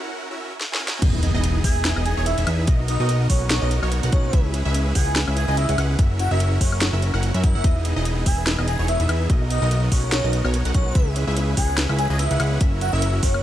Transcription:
0.00 C#4 E4 F#4 A#4 F#5
0.31 C#4 E4 F#4 A#4 E5
0.61 snare
0.72 C#4 E4 F#4 A#4 G#5, snare
0.88 snare
1.02 E1 B3 D#4 E4 G#4 D#5, kick, closed hi-hat, crash, impact
1.14 E4
1.23 D#4, closed hi-hat
1.34 E1 B3 D#4 E4 G#4 D#5
1.44 B3, closed hi-hat
1.55 G#4
1.64 E1 B3 D#4 E4 G#4 E5 G#5, kick, open hi-hat
1.76 B3
1.85 B4, snare, closed hi-hat
1.96 E1 B3 D#4 E4 G#4 D#5, high woodblock
2.05 D#4 G#5, closed hi-hat
2.17 E1 B3 D#4 E4 G#4 C#5 G#5
2.26 B3 E5, closed hi-hat
2.38 E1 B3 D#4 E4 G#4 E5, closed hi-hat
2.47 E2 B3 D#4 E4 G#4 E5, closed hi-hat, high woodblock
2.59 B3
2.67 B1 A#3 B3 D#4 F#4 A#4 D#5, kick, closed hi-hat
2.80 D#4
2.88 B3 D#5, closed hi-hat
3.00 B1 B3 D#4 F#4 A#4 D#5
3.09 A#3, closed hi-hat
3.21 F#4
3.30 B1 B3 D#4 F#4 A#4 C#5 F#5, kick, open hi-hat
3.41 A#3
3.51 A#4 C#5, snare, closed hi-hat
3.62 B1 B3 D#4 F#4 A#4 D#5
3.71 B3, closed hi-hat
3.83 B1 B3 D#4 F#4 A#4 C#5, high woodblock
3.92 A#3, closed hi-hat
4.03 B1 B3 D#4 F#4 A#4 F#5, closed hi-hat
4.12 B1 B3 D#4 F#4 A#4 C#5 F#5, kick, closed hi-hat
4.24 A#3
4.33 C#2 B3 C#4 E4 G#4 B4 E5, kick, closed hi-hat
4.45 E4
4.54 C#4, closed hi-hat
4.65 C#2 C#4 E4 G#4 B4 E5
4.74 B3, closed hi-hat
4.87 G#4
4.95 C#2 C#4 E4 G#4 B4 F#5 G#5, kick, open hi-hat
5.07 B3
5.16 B4, snare, closed hi-hat
5.27 C#2 C#4 E4 G#4 B4 E5, high woodblock
5.37 C#4 G#5, closed hi-hat
5.48 C#2 C#4 E4 G#4 B4 D#5 G#5
5.57 B3 E5, closed hi-hat
5.69 C#2 C#4 E4 G#4 B4 F#5, closed hi-hat
5.78 C#2 C#4 E4 G#4 B4 F#5, closed hi-hat, high woodblock
5.90 B3
5.99 F#1 A#3 C#4 E4 F#4 A#4 E5, kick, closed hi-hat
6.11 E4
6.19 C#4 F#5, closed hi-hat
6.31 F#1 C#4 E4 F#4 A#4 E5
6.40 A#3, closed hi-hat
6.52 F#4
6.61 F#1 C#4 E4 F#4 A#4 C#5 F#5, kick, open hi-hat
6.72 A#3, high woodblock
6.82 A#4, snare, closed hi-hat
6.93 F#1 C#4 E4 F#4 A#4 E5
7.02 C#4, closed hi-hat
7.14 F#1 C#4 E4 F#4 A#4 F#5, high woodblock
7.23 A#3, closed hi-hat
7.34 F#2 C#4 E4 F#4 A#4 E5, closed hi-hat
7.44 F#4 E5, kick, closed hi-hat
7.55 F#1 A#3 C#4 E4 F#4 A#4 F#5
7.64 E1 B3 D#4 E4 G#4 D#5, kick, closed hi-hat
7.76 E4
7.85 D#4, closed hi-hat
7.96 E1 B3 D#4 E4 G#4 D#5
8.05 B3, closed hi-hat
8.17 G#4
8.26 E1 B3 D#4 E4 G#4 E5 G#5, kick, open hi-hat
8.38 B3
8.47 B4, snare, closed hi-hat
8.58 E1 B3 D#4 E4 G#4 D#5, high woodblock
8.68 D#4 G#5, closed hi-hat
8.79 E1 B3 D#4 E4 G#4 C#5 G#5
8.88 B3 E5, closed hi-hat
9.00 E1 B3 D#4 E4 G#4 E5, closed hi-hat
9.09 E2 B3 D#4 E4 G#4 E5, closed hi-hat, high woodblock
9.21 B3
9.30 B1 B3 D#4 F#4 A#4 D#5, kick, closed hi-hat
9.41 D#4
9.50 B3 D#5, closed hi-hat
9.62 B1 B3 D#4 F#4 A#4 D#5
9.71 A#3, closed hi-hat
9.83 F#4
9.92 B1 B3 D#4 F#4 A#4 C#5 F#5, kick, open hi-hat
10.04 A#3
10.12 A#4 C#5, snare, closed hi-hat
10.24 B1 B3 D#4 F#4 A#4 D#5
10.33 B3, closed hi-hat
10.45 B1 B3 D#4 F#4 A#4 C#5, high woodblock
10.54 A#3, closed hi-hat
10.65 B1 B3 D#4 F#4 A#4 F#5, closed hi-hat
10.74 B1 B3 D#4 F#4 A#4 C#5 F#5, kick, closed hi-hat
10.86 A#3
10.95 C#2 B3 C#4 E4 G#4 B4 E5, kick, closed hi-hat
11.07 E4
11.16 C#4, closed hi-hat
11.27 C#2 C#4 E4 G#4 B4 E5
11.36 B3, closed hi-hat
11.48 G#4
11.57 C#2 C#4 E4 G#4 B4 F#5 G#5, kick, open hi-hat
11.69 B3
11.78 B4, snare, closed hi-hat
11.89 C#2 C#4 E4 G#4 B4 E5, high woodblock
11.99 C#4 G#5, closed hi-hat
12.10 C#2 C#4 E4 G#4 B4 D#5 G#5
12.19 B3 E5, closed hi-hat
12.31 C#2 C#4 E4 G#4 B4 F#5, closed hi-hat
12.40 C#2 C#4 E4 G#4 B4 F#5, closed hi-hat, high woodblock
12.52 B3
12.61 F#1 C#4 E4 F#4 A#4 E5, kick, closed hi-hat
12.72 E4
12.81 C#4 F#5, closed hi-hat
12.93 F#1 C#4 E4 F#4 A#4 E5
13.02 A#3, closed hi-hat
13.14 F#4
13.23 F#1 C#4 E4 F#4 A#4 C#5 F#5, kick, open hi-hat
13.34 A#3, high woodblock

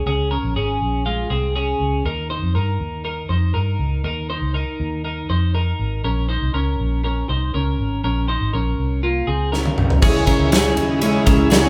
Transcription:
0.06 C#2 C#4 G#4
0.31 C#4 A#4
0.43 A#1
0.56 G#1 C#4 G#4
0.81 A#1
1.06 G#3 F4
1.30 C2 C4 G#4
1.56 C#4 G#4
1.80 C#2
2.05 D#2 D#4 A#4
2.30 D#4 C5
2.42 F2
2.55 G2 D#4 A#4
2.80 D#2
3.05 D#4 A#4
3.29 F2 D#4 C5
3.54 G2 D#4 A#4
3.79 C#2
4.04 D#2 D#4 A#4
4.30 D#4 C5
4.42 C#2
4.54 D#4 A#4
4.80 D#2
5.05 D#4 A#4
5.29 F2 D#4 C5
5.55 D#4 A#4
5.79 G#1
6.04 A#1 C#4 A#4
6.29 D#4 C5
6.42 C2
6.54 C#2 C#4 A#4
6.80 A#1
7.04 C#4 A#4
7.29 C2 D#4 C5
7.54 C#2 C#4 A#4
7.79 G#1
8.04 A#1 C#4 A#4
8.28 D#4 C5
8.41 G#1
8.53 A#1 C#4 A#4
8.78 C2
9.03 A#3 F4
9.27 C#2 C4 G#4
9.52 C#4 A#4, snare
9.66 high tom
9.78 C2, mid tom
9.90 floor tom
10.02 C#2 C#3 G#3 C#4 E4 G#4 C#5, kick, crash, tambourine
10.27 C#4 E4 G#4 A#4 C#5, kick, ride, tambourine
10.39 C#2
10.51 G#3 C#4 E4 G#4 C#5, snare, ride, tambourine
10.77 D#2 C#4 E4 G#4 D#5, ride
11.01 C#3 G#3 C#4 E4 G#4 C#5, ride
11.26 C#2 C#3 G#3 C#4 E4 G#4 A#4 E5, kick, ride, tambourine
11.50 C#2 C#4 E4 G#4 C#5, snare, ride, tambourine
11.64 C#3 G#3 C#4 E4 G#4

